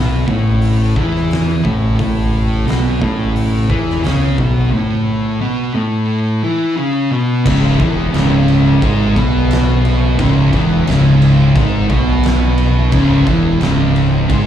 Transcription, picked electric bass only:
Already playing: B1
0.28 A1
0.96 E2
1.65 A1
1.99 A1
2.67 B1
3.02 A1
3.70 E2
4.04 C#2
4.38 B1
7.46 C#1
7.80 E1
8.14 C#1
8.83 G#1
9.16 B1
10.19 C#1
10.53 E1
10.87 C#1
11.56 G#1
11.89 B1
12.92 C#1
13.27 E1
13.61 C#1
14.30 G#1

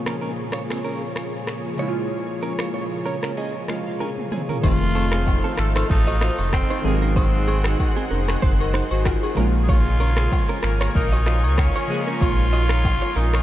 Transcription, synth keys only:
Already playing: C#3 G#3 A#3 F4
1.77 C#3 G#3 A#3
1.82 E4
1.88 F4
3.06 C#5
3.37 D#5
3.67 C3 G#3 A#3 F4 F5
3.74 C#3
3.86 F5
4.00 G#5
4.32 G#5
4.61 D#3 F3 A3 C4
4.66 F4
6.82 D#3 F#3 G#3 C4
6.87 F4
6.94 F#4
8.60 A#4 D#5
8.91 F#4 C5
9.06 F4 A#4
9.23 D#4 G#4
9.35 C#3 F3 G#3 A#3
9.40 F4
11.87 C#3 F3 G#3 A#3
11.92 D#4
11.99 F4

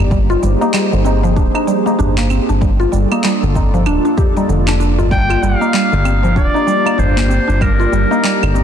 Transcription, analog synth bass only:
0.00 G1
0.43 G1
0.93 G1
1.37 D1
1.99 G1
2.49 G1
2.93 G1
3.43 G1
3.86 D1
4.49 F1
4.99 G1
5.43 G1
5.93 G1
6.36 D1
6.98 G1
7.49 G1
7.92 G1
8.43 G1

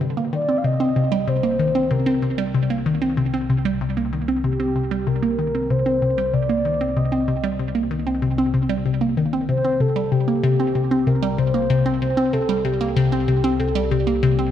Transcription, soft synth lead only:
0.34 D5
0.58 F5
0.65 D#5
1.29 C5
1.92 A#4
4.44 G4
5.07 A#4
5.71 C5
6.33 D5
6.97 D#5
9.49 C5
9.81 A4
10.12 G4
11.07 A#4
11.38 C5
12.01 C5
12.33 A4
12.64 G4
13.59 A4
13.91 G4

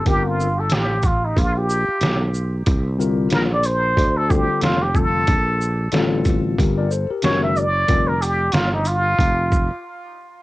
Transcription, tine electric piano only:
0.05 D3 G3 C4 F4 A#4
2.98 D3 G3 C4 F4 A#4
4.29 D3 G3 C4 F4 A4
4.94 D3 G3 C4 F4 A4
5.92 D3 G3 C4 F4 A4
6.58 G4 A#4
6.77 A#4 D5
6.91 A4 C5
7.10 G4 A#4
7.23 D#3 G#3 C#4 F#4 A#4
7.88 D3 G3 C4 F4 A#4

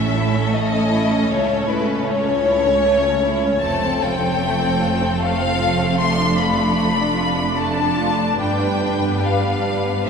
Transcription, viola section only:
Already playing: A3 C#4
3.64 A3 C4
6.00 D4
8.42 G3

